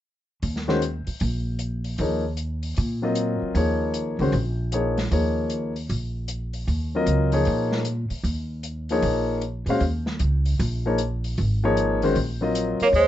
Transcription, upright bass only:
0.43 1.03 D#2 medium
1.07 muted upright bass stroke soft
1.21 1.95 A#1 medium
1.99 2.73 D#2 medium
2.78 3.38 A#2 medium
3.42 muted upright bass stroke soft
3.55 4.16 D#2 medium
4.19 4.32 C#2 medium
4.32 5.07 A#1 medium
5.11 5.86 D#2 medium
5.90 6.64 A#1 medium
6.67 7.04 D#2 medium
7.06 7.43 C#2 medium
7.47 8.07 A#2 medium
8.10 muted upright bass stroke soft
8.24 8.99 D#2 medium
9.02 9.64 A#1 medium
9.66 9.80 A#2 medium
9.80 10.17 D#2 medium
10.20 10.57 C#2 medium
10.59 11.34 A#1 medium
11.38 12.12 G#1 medium
12.15 12.76 A#1 medium
12.81 muted upright bass stroke soft
12.93 13.07 D#2 medium

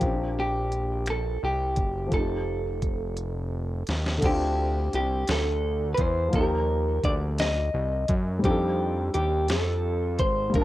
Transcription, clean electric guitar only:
0.00 0.34 G4 medium
0.40 1.10 G4 medium
1.10 1.41 A4 medium
1.45 2.14 G4 medium
2.14 3.84 A4 medium
4.26 4.94 G4 medium
4.95 5.30 G4 medium
5.31 5.89 A4 medium
5.94 6.00 B4 medium
6.01 6.35 C5 medium
6.35 7.04 A#4 medium
7.05 7.14 D5 medium
7.40 8.14 D#5 medium
8.45 9.11 G4 medium
9.14 9.49 G4 medium
9.50 10.22 A4 medium
10.20 10.52 C5 medium
10.55 10.64 A#4 medium

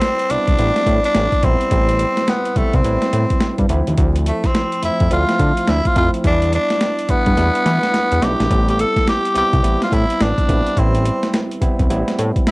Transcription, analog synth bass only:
0.30 0.37 C2 soft
0.48 0.56 C2 medium
0.59 0.72 A1 loud
0.87 1.00 A2 medium
1.15 1.28 A1 medium
1.44 1.56 A#1 medium
1.72 2.05 A1 loud
2.56 2.63 C2 soft
2.74 2.82 C2 medium
2.85 2.98 A1 loud
3.13 3.26 A2 loud
3.59 3.67 G2 medium
3.70 3.82 D2 medium
3.88 3.95 D#2 medium
3.98 4.32 D2 loud
4.83 4.90 F2 soft
5.01 5.08 F2 medium
5.12 5.24 D2 medium
5.39 5.52 D3 loud
5.68 5.81 D2 loud
5.96 6.09 F2 medium
6.24 6.58 E2 loud
7.09 7.16 G2 soft
7.27 7.35 G2 medium
7.38 7.50 E2 medium
7.66 7.79 E3 loud
8.12 8.20 E2 medium
8.22 8.35 B1 medium
8.40 8.48 A#1 medium
8.51 8.84 A1 loud
9.36 9.43 C2 soft
9.54 9.61 C2 medium
9.64 9.77 A1 medium
9.92 10.05 A2 loud
10.21 10.33 A1 medium
10.49 10.62 A#1 loud
10.77 11.11 A1 loud
11.62 11.69 C2 soft
11.80 11.88 C2 medium
11.90 12.03 A1 medium
12.19 12.32 A2 loud

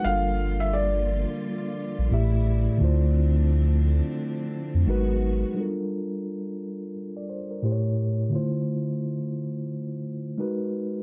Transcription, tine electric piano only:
0.02 2.06 G3 medium
0.02 2.07 D4 medium
0.02 2.08 F4 medium
0.07 2.08 A4 medium
0.07 2.09 A#4 medium
2.11 2.80 A2 medium
2.11 2.78 A3 medium
2.11 2.80 E4 medium
2.11 2.81 G4 medium
2.11 2.81 E5 medium
2.78 4.82 D3 medium
2.78 4.83 A3 medium
2.78 4.83 E4 medium
2.82 4.84 F4 medium
2.82 4.85 C5 medium
4.87 5.56 G#3 medium
4.87 5.56 D#4 medium
4.87 5.57 F#4 medium
4.87 5.57 A#4 medium
4.87 5.57 B4 medium
5.54 7.58 G3 medium
5.54 7.59 D4 medium
5.54 7.60 F4 medium
5.59 6.93 A4 medium
5.59 6.93 A#4 medium
7.17 7.28 D5 medium
7.30 7.49 C5 medium
7.51 7.83 A#4 medium
7.62 8.31 A2 medium
7.62 8.30 A3 medium
7.62 8.31 E4 medium
7.62 8.33 G4 medium
7.62 7.72 C5 medium
7.72 8.36 C#5 medium
8.29 10.33 D3 medium
8.29 10.34 A3 medium
8.29 10.35 E4 medium
8.34 10.36 F4 medium
8.34 10.36 C5 medium
10.38 11.03 G#3 medium
10.38 11.03 D#4 medium
10.38 11.03 F#4 medium
10.38 11.03 A#4 medium
10.38 11.03 B4 medium

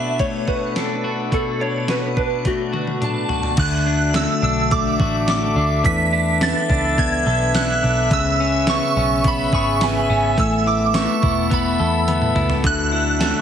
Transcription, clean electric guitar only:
0.00 1.30 B2 medium
0.00 0.19 A3 soft
0.00 0.76 D4 soft
0.00 0.47 F#4 medium
0.20 2.45 A3 medium
0.48 1.04 F#4 medium
0.76 1.60 D4 soft
1.04 1.32 F#4 medium
1.32 3.58 B2 medium
1.32 1.88 F#4 medium
1.60 2.16 D4 medium
1.88 2.72 F#4 medium
2.16 3.01 D4 soft
2.45 4.13 A3 medium
2.73 3.28 F#4 medium
3.01 3.86 D4 soft
3.29 4.99 F#4 medium
3.58 5.87 D3 medium
3.86 4.42 D4 medium
4.14 4.71 A3 medium
4.42 5.56 D4 medium
4.71 5.27 A3 medium
5.00 5.90 F#4 medium
5.27 6.41 A3 medium
5.56 6.12 D4 medium
5.84 9.34 E3 medium
6.13 6.68 D4 medium
6.41 6.98 B3 medium
6.69 7.82 D4 medium
6.98 7.54 B3 medium
7.26 8.17 A4 medium
7.55 8.43 B3 medium
7.83 8.17 D4 medium
8.12 10.38 C#3 medium
8.40 8.95 C#4 medium
8.68 9.24 B3 medium
8.97 10.09 C#4 medium
9.25 9.81 B3 medium
9.53 10.44 G#4 medium
9.81 10.94 B3 medium
10.10 10.44 C#4 medium
10.38 13.21 A3 medium
10.67 11.22 E4 medium
10.94 11.49 B3 medium
11.23 12.35 E4 medium
11.50 12.07 B3 medium
11.79 13.41 A4 medium
12.08 12.70 B3 medium
12.35 12.92 E4 medium
12.64 13.41 D3 medium
12.92 13.41 E4 medium
13.21 13.41 A3 medium

